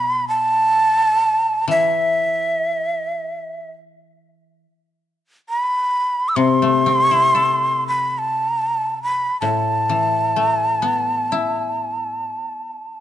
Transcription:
Already playing: koto B2, shakuhachi B5
0.28 shakuhachi A5
1.68 koto E3, shakuhachi E5
5.49 shakuhachi B5
6.29 shakuhachi E6
6.36 koto C3, shakuhachi C6
6.62 koto A3
6.86 koto C4
7.11 koto E4
7.35 koto A4
7.88 shakuhachi B5
8.18 shakuhachi A5
9.03 shakuhachi B5
9.41 koto A2, shakuhachi A5
9.89 koto E3
10.36 koto A3
10.82 koto B3
11.32 koto E4

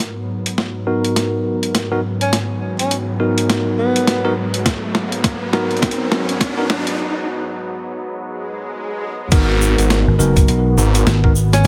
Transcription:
0.00 analog synth pad G#2 F#3 B3, snare, closed hi-hat, riser
0.46 closed hi-hat
0.58 snare
0.87 tine electric piano B3 D#4 F#4 A#4
1.05 closed hi-hat
1.16 snare, closed hi-hat
1.63 closed hi-hat
1.75 snare, closed hi-hat
1.92 tine electric piano B3 D#4 F#4 A#4
2.21 tenor saxophone C#4, closed hi-hat
2.33 snare, closed hi-hat
2.79 tenor saxophone C#4, closed hi-hat
2.91 closed hi-hat
3.20 tine electric piano B3 D#4 F#4 A#4
3.38 closed hi-hat
3.50 snare, closed hi-hat
3.78 tenor saxophone B3
3.96 closed hi-hat
4.07 snare, closed hi-hat
4.25 tine electric piano B3 D#4 F#4 A#4
4.54 closed hi-hat
4.66 kick, snare, closed hi-hat
4.95 snare
5.12 closed hi-hat
5.24 kick, snare, closed hi-hat
5.53 tine electric piano B3 D#4 F#4 A#4, snare
5.71 closed hi-hat
5.77 closed hi-hat
5.82 kick, snare, closed hi-hat
5.91 closed hi-hat
6.12 snare
6.29 closed hi-hat
6.41 kick, snare, closed hi-hat
6.57 tine electric piano B3 D#4 F#4 A#4
6.70 snare
6.87 closed hi-hat
8.15 swell
9.32 detuned saw bass G#1, analog synth pad G#3 B3 F#4, tine electric piano B3 D#4 F#4 A#4, kick, closed hi-hat, crash, shaker
9.61 shaker
9.78 detuned saw bass G#1, closed hi-hat, shaker
9.90 snare, closed hi-hat, shaker
10.07 slap bass G#1
10.19 slap bass F#1, tine electric piano B3 D#4 F#4 A#4, shaker
10.36 kick, closed hi-hat, shaker
10.48 slap bass B1, closed hi-hat, shaker
10.78 detuned saw bass G#1, shaker
10.95 closed hi-hat, shaker
11.06 slap bass G#1, snare, closed hi-hat, shaker
11.24 tine electric piano B3 D#4 F#4 A#4, kick
11.36 shaker
11.53 tenor saxophone C#4, snare, closed hi-hat, shaker

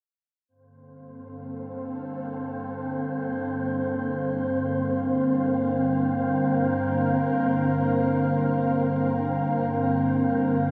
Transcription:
0.48 analog synth pad G2 D3 A#3 A4 F5, synth texture C4 C5
5.66 analog synth pad A#4

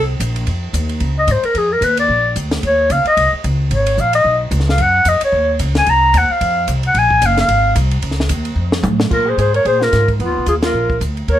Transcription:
Already playing: upright bass C2
0.20 upright bass A#1, kick, hi-hat pedal, ride
0.36 ride
0.47 upright bass F2, kick, ride
0.73 upright bass D#2, kick, hi-hat pedal, ride
0.89 ride
1.00 upright bass C#2, kick, ride
1.19 clarinet D#5
1.27 upright bass G#2, kick, hi-hat pedal, ride
1.31 clarinet C5
1.43 clarinet A#4, muted upright bass stroke, ride
1.54 upright bass F2, clarinet G#4, kick, ride
1.72 clarinet A#4
1.81 upright bass D#2, clarinet B4, kick, hi-hat pedal, ride
1.97 clarinet D5, ride
2.09 upright bass A#1, kick
2.36 upright bass D2, kick, hi-hat pedal, ride
2.51 snare, ride
2.63 upright bass D#2, clarinet C#5, kick, ride
2.90 upright bass C#2, clarinet F5, kick, hi-hat pedal, ride
3.05 clarinet D#5, muted upright bass stroke, ride
3.17 upright bass C2, kick, ride
3.33 muted upright bass stroke
3.44 upright bass C#2, kick, hi-hat pedal, ride
3.71 upright bass G#1, clarinet C#5, kick, ride
3.86 ride
3.98 upright bass A#1, clarinet F5, kick, hi-hat pedal
4.13 clarinet D#5, ride
4.24 upright bass B1, kick
4.51 upright bass C#2, kick, hi-hat pedal, ride
4.60 snare
4.69 clarinet F5, snare
4.78 upright bass F#2, clarinet F#5, kick, ride
5.05 upright bass F2, clarinet D#5, kick, hi-hat pedal, ride
5.21 clarinet C#5, muted upright bass stroke, ride
5.32 upright bass D#2, kick
5.59 upright bass C#2, kick, hi-hat pedal, ride
5.75 clarinet G#5, snare, ride
5.86 upright bass C2, clarinet A#5, kick, ride
6.14 upright bass D#2, kick, hi-hat pedal, ride
6.18 clarinet F#5
6.30 clarinet F5, muted upright bass stroke
6.41 upright bass F2, kick, ride
6.68 upright bass C2, kick, hi-hat pedal, ride
6.83 clarinet F#5, ride
6.94 upright bass A#1, clarinet G#5, kick, ride
7.10 kick
7.22 upright bass F#1, kick, hi-hat pedal, ride
7.26 clarinet F5
7.37 clarinet F5, snare, ride
7.48 upright bass G#1, kick, ride
7.75 upright bass C2, kick, hi-hat pedal, ride
7.91 ride
8.02 upright bass C#2, kick, ride
8.11 snare
8.20 snare
8.29 upright bass D#2, kick, hi-hat pedal, ride
8.45 ride
8.56 upright bass F2
8.72 snare
8.83 upright bass A2, hi-hat pedal, mid tom
9.00 snare
9.11 upright bass A#2, alto saxophone F4, clarinet A#4, kick, crash
9.26 alto saxophone G#4, clarinet C5
9.38 upright bass G#2, alto saxophone G#4, clarinet C5, kick, hi-hat pedal, ride
9.54 alto saxophone A#4, clarinet C#5, ride
9.65 upright bass A#2, alto saxophone G#4, clarinet C5, kick, ride
9.81 alto saxophone F4, clarinet A#4, snare
9.92 upright bass G#2, kick, snare, hi-hat pedal, ride
10.08 kick, ride
10.20 upright bass F2, alto saxophone B3, clarinet F4, kick, ride
10.28 upright bass D#2
10.37 upright bass B1
10.46 upright bass D#2, alto saxophone F4, clarinet G#4, kick, hi-hat pedal, ride
10.62 alto saxophone F4, clarinet A#4, snare, ride
10.73 upright bass A#1
10.90 kick
11.01 upright bass D2, kick, hi-hat pedal, ride
11.17 ride
11.28 upright bass D#2, alto saxophone A#4, clarinet C#5, kick, ride

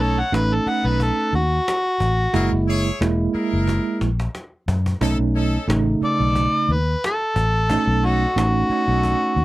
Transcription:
Already playing: fingered electric bass B1, tine electric piano A3 C#4 D#4
0.00 horn section D#4 A4 C#5, harmonica A4
0.19 harmonica F#5
0.32 fingered electric bass A1, tine electric piano A3 C#4 D#4, harmonica B4, cajon slap
0.54 harmonica A4
0.65 horn section D#4 A4 B4, harmonica F#5, muted fingered electric bass stroke, cajon slap
0.84 fingered electric bass B1, harmonica B4
1.00 harmonica A4, cajon bass
1.33 fingered electric bass D#2, harmonica F#4, cajon slap
1.68 cajon slap
2.00 fingered electric bass A1, cajon bass
2.33 fingered electric bass F#1, tine electric piano G#3 A#3 E4, horn section E4 G#4 A#4, cajon bass
2.52 fingered electric bass F#1
2.67 horn section E4 G#4 C#5, cajon slap
3.01 fingered electric bass E1, tine electric piano G#3 A#3 E4, cajon slap
3.34 horn section E4 G#4 A#4, muted fingered electric bass stroke, cajon slap
3.53 fingered electric bass F#1
3.68 cajon bass, cajon slap
4.01 fingered electric bass A#1, cajon slap
4.20 cajon slap
4.35 cajon slap
4.68 fingered electric bass F#2, cajon bass
4.86 cajon bass
5.01 fingered electric bass B1, tine electric piano A3 C#4 D#4, horn section C#4 D#4 A4, cajon bass
5.19 fingered electric bass B1
5.34 horn section C#4 D#4 A4, cajon slap
5.68 fingered electric bass A1, tine electric piano C#3 A3 D#4, cajon slap
6.01 horn section B3 D#4 A4, harmonica D5, muted fingered electric bass stroke, cajon slap
6.20 fingered electric bass B1
6.35 cajon bass
6.69 fingered electric bass D#2, harmonica B4, cajon slap
7.04 harmonica A4, cajon slap
7.36 fingered electric bass A1, cajon bass
7.70 tine electric piano A3 C#4 D#4, horn section C#4 D#4 A4, cajon bass
7.87 fingered electric bass B1
8.03 horn section C#4 D#4 A4, harmonica F#4, cajon slap
8.36 fingered electric bass A1, tine electric piano A3 C#4 D#4, harmonica F#4, cajon slap
8.69 horn section C#4 D#4 A4, muted fingered electric bass stroke, cajon slap
8.88 fingered electric bass B1
9.03 cajon bass, cajon slap
9.36 fingered electric bass D#2, cajon slap

